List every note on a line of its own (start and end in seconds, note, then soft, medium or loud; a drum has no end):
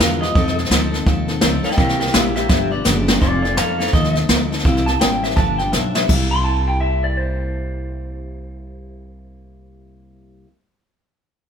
0.00 0.34 E2 loud
0.00 0.22 G2 medium
0.00 0.22 D3 medium
0.00 0.23 F3 medium
0.00 0.23 B3 medium
0.00 0.22 F4 loud
0.00 0.20 G4 medium
0.00 0.21 A#4 medium
0.00 snare loud
0.00 hi-hat pedal medium
0.21 0.36 B3 soft
0.21 0.36 F4 medium
0.21 0.35 G4 medium
0.21 0.56 D#5 loud
0.21 snare soft
0.25 0.34 F3 medium
0.35 0.70 F2 loud
0.35 0.58 F3 medium
0.35 0.58 C4 medium
0.35 0.56 D#4 medium
0.35 0.54 A4 medium
0.35 kick loud
0.35 snare soft
0.47 snare soft
0.56 0.70 D#4 medium
0.56 0.70 A4 medium
0.56 snare soft
0.60 0.69 C4 soft
0.65 snare soft
0.70 1.05 D2 medium
0.70 0.93 F3 medium
0.70 0.93 C4 loud
0.70 0.92 D#4 loud
0.70 0.90 A4 loud
0.70 snare loud
0.70 hi-hat pedal medium
0.91 1.05 C4 medium
0.91 1.06 D#4 medium
0.91 1.06 A4 medium
0.91 snare soft
1.05 1.41 D#2 loud
1.05 1.28 F3 medium
1.05 1.29 C4 medium
1.05 1.28 D#4 medium
1.05 1.27 A4 medium
1.05 kick loud
1.05 snare soft
1.28 1.41 C4 soft
1.28 1.42 D#4 medium
1.28 1.42 A4 medium
1.28 snare soft
1.41 1.63 C#2 medium
1.41 1.64 F3 medium
1.41 1.65 C4 loud
1.41 1.63 D#4 medium
1.41 1.62 A4 medium
1.41 snare loud
1.41 hi-hat pedal medium
1.63 1.76 C4 soft
1.63 1.77 D#4 medium
1.63 1.77 A4 medium
1.63 1.78 D#5 medium
1.63 1.77 G5 medium
1.63 muted upright bass stroke soft
1.63 snare soft
1.71 1.99 C3 medium
1.71 snare soft
1.76 2.13 C2 medium
1.76 1.99 G3 medium
1.76 2.00 A#3 medium
1.76 1.99 E4 medium
1.76 1.96 G4 medium
1.76 1.98 A#4 medium
1.76 1.99 G5 medium
1.76 kick loud
1.76 snare soft
1.89 snare soft
1.98 2.12 A#3 medium
1.98 2.13 E4 soft
1.98 2.13 G4 medium
1.98 2.14 A#4 medium
1.98 2.15 G5 medium
1.98 snare soft
2.07 snare soft
2.12 2.49 A#1 medium
2.12 2.36 C3 medium
2.12 2.36 G3 medium
2.12 2.36 A#3 medium
2.12 2.35 E4 medium
2.12 2.35 G4 medium
2.12 2.33 G4 loud
2.12 2.35 E5 medium
2.12 snare loud
2.12 hi-hat pedal medium
2.34 2.49 A#3 soft
2.34 2.49 E4 medium
2.34 2.49 G4 medium
2.34 2.48 G4 medium
2.34 2.49 E5 medium
2.34 snare soft
2.48 2.85 G1 medium
2.48 2.71 F3 medium
2.48 2.72 B3 medium
2.48 2.71 D4 medium
2.48 2.70 G4 medium
2.48 2.69 G4 medium
2.48 2.71 E5 loud
2.48 kick loud
2.48 snare medium
2.71 2.84 F3 soft
2.71 2.84 B3 medium
2.71 2.85 D4 medium
2.71 2.85 G4 medium
2.71 2.85 D5 loud
2.84 3.21 F#1 loud
2.84 3.07 G2 medium
2.84 3.08 D3 medium
2.84 3.08 F3 medium
2.84 3.07 B3 medium
2.84 3.06 D4 medium
2.84 3.05 G4 medium
2.84 snare loud
2.84 hi-hat pedal medium
3.07 3.19 F3 medium
3.07 3.20 B3 medium
3.07 3.21 D4 medium
3.07 3.21 G4 medium
3.07 snare loud
3.20 3.57 F1 medium
3.20 3.43 F3 medium
3.20 3.43 C4 medium
3.20 3.44 D#4 medium
3.20 3.41 F4 medium
3.20 3.42 A4 medium
3.20 3.41 D5 medium
3.20 kick loud
3.20 snare soft
3.42 3.57 C4 medium
3.42 3.57 D#4 soft
3.42 3.56 F4 medium
3.42 3.57 A4 medium
3.42 3.57 D5 medium
3.42 snare soft
3.56 3.92 F2 medium
3.56 3.79 F3 medium
3.56 3.80 C4 medium
3.56 3.80 D#4 medium
3.56 3.77 A4 medium
3.56 3.78 A4 medium
3.56 3.78 F5 medium
3.56 snare loud
3.56 hi-hat pedal medium
3.79 3.94 D#4 medium
3.79 3.92 A4 medium
3.79 3.93 A4 medium
3.79 3.93 F5 medium
3.79 snare soft
3.83 3.93 C4 soft
3.87 snare soft
3.93 4.28 D#2 medium
3.93 4.16 F3 medium
3.93 4.16 C4 medium
3.93 4.16 D#4 medium
3.93 4.14 A4 medium
3.93 4.15 D#5 loud
3.93 kick loud
3.93 snare soft
4.04 snare soft
4.15 4.29 C4 soft
4.15 4.30 D#4 medium
4.15 4.29 A4 medium
4.15 snare soft
4.28 4.64 D2 medium
4.28 4.51 F3 medium
4.28 4.52 C4 medium
4.28 4.52 D#4 medium
4.28 4.50 A4 medium
4.28 snare loud
4.28 hi-hat pedal medium
4.51 4.66 C4 medium
4.51 4.66 D#4 medium
4.51 4.65 A4 medium
4.51 snare soft
4.59 snare soft
4.65 5.00 C2 medium
4.65 4.87 C3 medium
4.65 4.88 G3 medium
4.65 4.88 A#3 loud
4.65 4.87 E4 loud
4.65 4.85 G4 loud
4.65 kick loud
4.65 snare soft
4.77 snare soft
4.86 5.00 A#3 soft
4.86 5.00 E4 medium
4.86 5.01 G4 medium
4.86 5.00 A5 loud
4.86 snare soft
4.99 5.36 A1 medium
4.99 5.22 G3 medium
4.99 5.23 A#3 medium
4.99 5.23 E4 medium
4.99 5.21 G4 medium
4.99 5.22 G5 loud
4.99 snare loud
4.99 hi-hat pedal medium
5.22 5.38 A#3 soft
5.22 5.37 E4 soft
5.22 5.37 G4 medium
5.22 5.37 E5 medium
5.22 snare soft
5.30 snare soft
5.36 5.72 G1 medium
5.36 5.59 G2 medium
5.36 5.60 D3 medium
5.36 5.60 F3 medium
5.36 5.60 B3 medium
5.36 5.60 D4 medium
5.36 5.58 G4 medium
5.36 5.58 A5 loud
5.36 kick loud
5.36 snare soft
5.58 5.73 B3 soft
5.58 5.74 D4 medium
5.58 5.73 G4 medium
5.58 5.72 G5 medium
5.58 snare soft
5.63 5.71 F3 soft
5.72 6.08 B1 loud
5.72 5.95 F3 medium
5.72 5.96 B3 medium
5.72 5.94 D4 medium
5.72 5.93 G4 medium
5.72 5.94 E5 medium
5.72 snare medium
5.72 hi-hat pedal medium
5.94 6.09 F3 soft
5.94 6.10 B3 soft
5.94 6.09 D4 medium
5.94 6.08 G4 medium
5.94 6.09 E5 loud
5.94 snare medium
6.07 10.43 C2 loud
6.07 10.46 C3 medium
6.07 10.47 G3 medium
6.07 10.47 A#3 medium
6.07 kick loud
6.07 crash medium
6.12 10.48 E4 medium
6.12 10.49 G4 loud
6.31 6.44 C6 loud
6.44 6.66 A5 medium
6.68 6.80 G5 medium
6.81 7.02 E5 medium
7.04 7.17 D5 medium
7.17 10.43 C5 medium